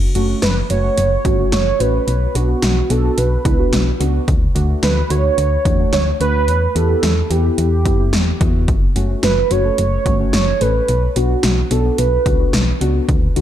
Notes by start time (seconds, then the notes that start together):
0.15 F#1 A3 C#4 F#4, closed hi-hat
0.29 A3 C#4 F#4
0.42 F#1 B4, snare, closed hi-hat
0.70 F#1 A3 C#4 F#4 C#5, closed hi-hat
0.84 A3 C#4 F#4
0.98 F#1, closed hi-hat
1.25 G1 A3 C#4 F#4, kick, closed hi-hat
1.39 A3 C#4 F#4
1.52 F#1 C#5, snare, closed hi-hat
1.80 A1 A3 C#4 F#4 B4, closed hi-hat
2.08 B1, closed hi-hat
2.35 B1 B3 D4 F#4, closed hi-hat
2.49 B3 D4 F#4
2.62 B1, snare, closed hi-hat
2.90 B1 B3 D4 F#4 A4, closed hi-hat
3.04 B3 D4 F#4
3.18 B1 B4, closed hi-hat
3.45 C#2 B3 D4 E4, kick, closed hi-hat
3.59 B3 D4 F#4
3.73 B1, snare, closed hi-hat
4.00 C#2 B3 D4 F#4, closed hi-hat
4.28 D2, kick, closed hi-hat
4.55 D2 A3 D4 F#4, closed hi-hat
4.69 A3 D4 F#4
4.83 D2 B4, snare, closed hi-hat
5.10 D2 A3 D4 F#4 C#5, closed hi-hat
5.24 A3 D4 F#4
5.38 D2, closed hi-hat
5.65 E2 A3 D4 F#4, kick, closed hi-hat
5.79 A3 D4 F#4
5.93 D2 C#5, snare, closed hi-hat
6.20 D2 A3 D4 F#4 B4, closed hi-hat
6.48 E2, closed hi-hat
6.75 E2 B3 E4 G4 A4, closed hi-hat
6.89 B3 E4 G4
7.03 E2, snare, closed hi-hat
7.30 E2 B3 E4 G4, closed hi-hat
7.45 B3 E4 G4
7.58 E2 G4, closed hi-hat
7.86 F#2 B3 E4 G4, kick, closed hi-hat
8.00 B3 E4 G4
8.13 E2, snare, closed hi-hat
8.41 E2 B3 E4 F#4, kick, closed hi-hat
8.68 F#1, kick, closed hi-hat
8.96 F#1 A3 C#4 F#4, closed hi-hat
9.10 A3 C#4 F#4
9.23 F#1 B4, snare, closed hi-hat
9.51 F#1 A3 C#4 F#4 C#5, closed hi-hat
9.65 A3 C#4 A4
9.78 F#1, closed hi-hat
10.06 G1 A3 C#4 F#4, kick, closed hi-hat
10.20 A3 C#4 F#4
10.33 F#1 C#5, snare, closed hi-hat
10.61 A1 A3 C#4 A4 B4, closed hi-hat
10.88 B1, closed hi-hat
11.16 B1 B3 D4 F#4, closed hi-hat
11.30 B3 D4 F#4
11.43 B1, snare, closed hi-hat
11.71 B1 B3 D4 F#4 A4, closed hi-hat
11.85 B3 D4 F#4
11.98 B1 B4, closed hi-hat
12.26 C#2 B3 D4 F#4, kick, closed hi-hat
12.40 B3 D4 F#4
12.53 B1, snare, closed hi-hat
12.81 C#2 B3 D4 F#4, closed hi-hat
13.09 D2, kick, closed hi-hat
13.36 D2 A3 D4 F#4, closed hi-hat